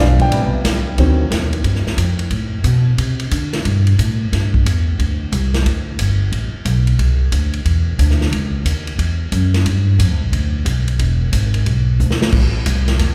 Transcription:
0.00 0.30 B1 loud
0.00 0.29 F3 medium
0.00 0.29 G#3 soft
0.00 0.29 D4 medium
0.00 0.21 F5 medium
0.19 0.52 G5 medium
0.19 kick medium
0.19 ride medium
0.31 0.51 A1 medium
0.31 0.56 C3 medium
0.31 0.57 G3 soft
0.31 0.57 B3 medium
0.31 kick soft
0.31 ride medium
0.53 muted upright bass stroke soft
0.64 0.97 C2 loud
0.64 kick soft
0.64 snare medium
0.64 hi-hat pedal medium
0.64 ride medium
0.98 1.30 D2 medium
0.98 1.23 D#3 medium
0.98 1.23 F#3 soft
0.98 1.24 C4 medium
0.98 kick soft
0.98 ride medium
1.30 1.63 D#2 loud
1.30 kick soft
1.30 snare medium
1.30 hi-hat pedal medium
1.30 ride medium
1.53 ride medium
1.64 1.84 G2 medium
1.64 kick soft
1.64 ride medium
1.75 snare soft
1.86 muted upright bass stroke soft
1.86 snare medium
1.97 2.30 F2 medium
1.97 kick soft
1.97 hi-hat pedal medium
1.97 ride medium
2.19 ride medium
2.30 2.63 A2 medium
2.30 kick soft
2.30 ride medium
2.64 2.97 B2 loud
2.64 kick soft
2.64 hi-hat pedal medium
2.64 ride medium
2.98 3.30 C3 medium
2.98 kick soft
2.98 ride medium
3.20 ride medium
3.31 3.64 D3 loud
3.31 kick soft
3.31 hi-hat pedal medium
3.31 ride medium
3.53 snare medium
3.53 ride medium
3.65 3.97 G2 medium
3.65 kick soft
3.65 ride medium
3.87 ride medium
3.99 4.31 A2 loud
3.99 kick soft
3.99 hi-hat pedal medium
3.99 ride medium
4.32 4.64 G2 medium
4.32 kick soft
4.32 snare soft
4.32 ride medium
4.54 kick medium
4.66 4.98 E2 loud
4.66 kick soft
4.66 hi-hat pedal medium
4.66 ride medium
4.99 5.31 D2 medium
4.99 kick soft
4.99 ride medium
5.32 5.64 C2 loud
5.32 kick soft
5.32 hi-hat pedal medium
5.32 ride medium
5.54 snare medium
5.54 ride medium
5.65 5.98 D2 medium
5.65 kick soft
5.65 ride medium
5.99 6.31 G1 medium
5.99 kick soft
5.99 hi-hat pedal medium
5.99 ride loud
6.32 6.52 A1 medium
6.32 kick soft
6.32 ride medium
6.54 muted upright bass stroke soft
6.65 6.98 B1 medium
6.65 kick soft
6.65 hi-hat pedal medium
6.65 ride medium
6.87 ride medium
6.99 7.31 C2 medium
6.99 kick soft
6.99 ride medium
7.32 7.64 D2 loud
7.32 kick soft
7.32 hi-hat pedal medium
7.32 ride medium
7.53 ride soft
7.65 7.98 E2 medium
7.65 kick soft
7.65 ride medium
7.99 8.31 D2 loud
7.99 kick soft
7.99 hi-hat pedal medium
7.99 ride medium
8.10 snare soft
8.21 snare medium
8.32 8.64 C#2 medium
8.32 kick soft
8.32 ride medium
8.65 8.98 D#2 loud
8.65 kick soft
8.65 hi-hat pedal medium
8.65 ride medium
8.87 ride medium
8.98 9.31 E2 medium
8.98 kick soft
8.98 ride medium
9.32 9.64 F#2 loud
9.32 kick soft
9.32 hi-hat pedal medium
9.32 ride medium
9.54 snare medium
9.54 ride medium
9.65 9.98 G2 loud
9.65 kick soft
9.65 ride medium
9.99 10.09 F2 loud
9.99 kick soft
9.99 hi-hat pedal medium
9.99 ride medium
10.09 10.20 D2 medium
10.21 10.32 B1 medium
10.32 10.65 D2 medium
10.32 kick soft
10.32 ride medium
10.65 10.98 B1 loud
10.65 kick soft
10.65 hi-hat pedal medium
10.65 ride medium
10.88 ride medium
10.99 11.32 E1 medium
10.99 kick soft
10.99 ride medium
11.32 11.65 G#1 medium
11.32 kick soft
11.32 hi-hat pedal medium
11.32 ride medium
11.54 ride medium
11.66 11.98 B1 medium
11.66 kick soft
11.66 ride medium
12.00 12.32 D2 loud
12.00 hi-hat pedal medium
12.11 snare medium
12.22 snare loud
12.32 12.65 A1 medium
12.32 kick medium
12.32 crash loud
12.66 12.99 C2 medium
12.66 kick soft
12.66 hi-hat pedal medium
12.66 ride medium
12.88 snare medium
12.88 ride medium
12.99 13.15 E2 medium
12.99 kick soft
12.99 snare soft
12.99 ride medium

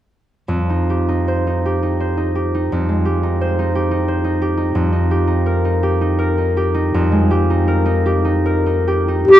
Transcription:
0.48 2.71 F2 soft
0.70 1.07 D#4 soft
0.90 1.64 G4 soft
1.09 1.46 D#4 soft
1.28 1.99 C5 soft
1.47 1.81 D#4 soft
1.66 2.34 G4 soft
1.83 2.16 D#4 soft
2.00 3.40 C5 soft
2.17 2.53 D#4 soft
2.35 3.04 G4 soft
2.55 3.22 D#4 soft
2.72 4.74 F2 soft
2.89 6.79 G#3 soft
3.05 3.74 G4 soft
3.23 3.58 D#4 soft
3.41 4.07 C5 soft
3.59 3.90 D#4 soft
3.75 4.40 G4 soft
3.91 4.23 D#4 soft
4.08 7.98 C5 soft
4.24 4.56 D#4 soft
4.42 5.10 G4 soft
4.57 4.91 D#4 soft
4.75 6.93 F2 soft
4.93 5.26 D#4 soft
5.11 5.82 G4 soft
5.27 5.64 D#4 soft
5.46 6.17 A#4 soft
5.65 6.00 D#4 soft
5.83 6.56 G4 soft
6.01 6.36 D#4 soft
6.19 7.67 A#4 soft
6.38 6.73 D#4 soft
6.57 7.30 G4 soft
6.75 7.49 D#4 soft
6.94 9.27 F2 soft
7.12 9.40 G#3 soft
7.31 8.05 G4 soft
7.50 7.84 D#4 soft
7.68 8.44 A#4 soft
7.86 8.23 D#4 soft
8.06 8.86 G4 soft
8.25 8.65 D#4 soft
8.46 9.30 A#4 soft
8.66 9.07 D#4 soft
8.88 9.31 G4 soft
9.08 9.40 D#4 soft
9.28 9.40 F2 soft
9.28 9.40 G4 soft

